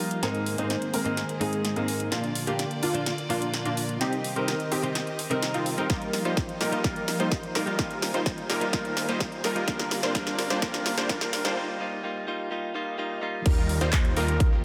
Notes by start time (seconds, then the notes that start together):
Already playing: F3 G3 A#3 D#4 F4 G4 A#4 D#5
0.11 closed hi-hat
0.22 G#2 D#3 G#3 A#3 C4 D#4 G#4 A#4 C5, snare, closed hi-hat
0.35 closed hi-hat
0.46 open hi-hat
0.57 G#2 G#3 A#3 C4 D#4 C5, closed hi-hat
0.70 snare, closed hi-hat
0.82 closed hi-hat
0.94 G#3 A#3 C4 D#4 A#4, open hi-hat
1.05 G#2 G#3 A#3 C4 D#4, closed hi-hat
1.17 snare, closed hi-hat
1.29 closed hi-hat
1.40 G#2 G#3 A#3 C4 D#4 G#4, open hi-hat
1.53 closed hi-hat
1.65 snare, closed hi-hat
1.76 G#2 G#3 A#3 C4 D#4 A#4, closed hi-hat
1.88 open hi-hat
2.00 closed hi-hat
2.11 A#2 D3 F3 A#3 D4 F4 D5, snare, closed hi-hat
2.24 closed hi-hat
2.35 open hi-hat
2.47 A#2 F3 A#3 D4 F4 G4, closed hi-hat
2.59 snare, closed hi-hat
2.71 closed hi-hat
2.83 A#3 D4 F4, open hi-hat
2.94 A#2 F3 A#3 D4 F4, closed hi-hat
3.06 snare, closed hi-hat
3.18 closed hi-hat
3.29 A#2 F3 A#3 D4 F4, open hi-hat
3.42 closed hi-hat
3.54 snare, closed hi-hat
3.65 A#2 F3 A#3 D4 F4, closed hi-hat
3.77 open hi-hat
3.89 closed hi-hat
4.00 C3 D#3 G3 C4 D#4 G4 D#5, snare, closed hi-hat
4.13 closed hi-hat
4.24 open hi-hat
4.35 C3 G3 C4 D#4 G4 A#4, closed hi-hat
4.48 snare, closed hi-hat
4.60 closed hi-hat
4.72 C4 D#4 G4, open hi-hat
4.83 C3 G3 C4 D#4 G4, closed hi-hat
4.95 snare, closed hi-hat
5.07 closed hi-hat
5.19 open hi-hat
5.30 C3 G3 C4 D#4 A#4, closed hi-hat
5.42 snare, closed hi-hat
5.54 C4 D#4 F4, closed hi-hat
5.66 open hi-hat
5.77 G3 C4 D#4 G4 A#4, closed hi-hat
5.89 F3 G3 A#3 D#4 F4 A#4 D#5, kick, snare, closed hi-hat, riser
6.02 closed hi-hat
6.13 snare, open hi-hat
6.25 G3 A#3 D#4 F4 C5, closed hi-hat
6.37 kick, snare, closed hi-hat
6.49 closed hi-hat
6.61 G3 A#3 D#4 F4 A#4, snare, open hi-hat
6.72 G3 A#3 D#4 F4, closed hi-hat
6.84 G3 A#3 D#4 F4 A#4, kick, snare, closed hi-hat
6.96 closed hi-hat
7.08 snare, open hi-hat
7.19 G3 A#3 D#4 F4 C5, closed hi-hat
7.32 kick, snare, closed hi-hat
7.43 closed hi-hat
7.55 G3 A#3 D#4 F4 A#4, snare, open hi-hat
7.66 G3 A#3 D#4 F4, closed hi-hat
7.78 D#3 G3 A#3 D#4 F4 A#4 C5 G#5, kick, snare, closed hi-hat
7.91 closed hi-hat
8.02 snare, open hi-hat
8.13 G3 A#3 D#4 F4 C5, closed hi-hat
8.26 kick, snare, closed hi-hat
8.38 closed hi-hat
8.50 G3 A#3 D#4 F4 A#4, snare, open hi-hat
8.61 G3 A#3 D#4 F4, closed hi-hat
8.72 G3 A#3 D#4 F4 A#4, kick, snare, closed hi-hat
8.85 closed hi-hat
8.97 snare, open hi-hat
9.08 G3 A#3 D#4 F4 C5, closed hi-hat
9.20 kick, snare, closed hi-hat
9.32 closed hi-hat
9.44 G3 A#3 D#4 F4 A#4, snare, open hi-hat
9.55 G3 A#3 D#4 F4, closed hi-hat
9.67 D3 G3 A#3 D4 F4 A#4 D5, kick, snare, closed hi-hat
9.79 snare, closed hi-hat
9.91 snare, open hi-hat
10.02 G3 A#3 D4 F4 C5, snare, closed hi-hat
10.14 G3 A#3 D4 F4 A#4, kick, snare, closed hi-hat
10.27 snare, closed hi-hat
10.39 snare, open hi-hat
10.50 G3 A#3 D4 F4 C5, snare, closed hi-hat
10.62 G3 A#3 D4 F4 A#4, kick, snare, closed hi-hat
10.74 snare, closed hi-hat
10.86 snare, open hi-hat
10.97 G3 A#3 D4 F4 C5, snare, closed hi-hat
11.09 G3 A#3 D4 F4 A#4, kick, snare, closed hi-hat
11.21 snare, closed hi-hat
11.33 snare, open hi-hat
11.44 G3 A#3 D4 F4 C5, snare, closed hi-hat
11.56 G3 A#3 D#4 F4
11.80 G3 A#3 D#4 F4
12.03 G3 A#3 D#4 F4
12.27 G3 A#3 D#4 F4
12.51 G3 A#3 D#4 F4, swell
12.74 G3 A#3 D#4 F4
12.98 G3 A#3 D#4 F4
13.21 G3 A#3 D#4 F4
13.46 D#2 D#3 G3 A#3 D#4 F4 G4 A#4, kick, closed hi-hat, crash
13.69 open hi-hat
13.81 D#2 G3 A#3 D#4 F4 C5, closed hi-hat
13.93 kick, clap, closed hi-hat
14.05 closed hi-hat
14.16 D#2 G3 A#3 D#4 F4 A#4, open hi-hat
14.28 closed hi-hat
14.40 kick, closed hi-hat